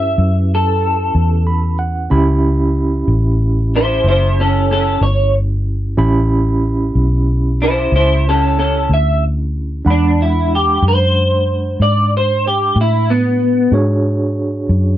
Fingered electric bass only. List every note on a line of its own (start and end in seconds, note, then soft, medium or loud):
0.00 0.15 G2 medium
0.18 1.12 F#2 medium
1.15 2.09 E2 medium
2.11 3.05 C#2 medium
3.08 4.02 A1 medium
4.04 4.99 F#1 medium
5.01 5.96 G1 medium
5.98 6.92 A1 medium
6.95 7.89 B1 medium
7.92 8.86 C#2 medium
8.89 9.83 D2 medium
9.86 10.80 E2 medium
10.82 11.76 F#2 medium
11.80 12.74 G#2 medium
12.76 13.70 A2 medium
13.72 14.66 G#2 medium
14.69 14.97 F#2 medium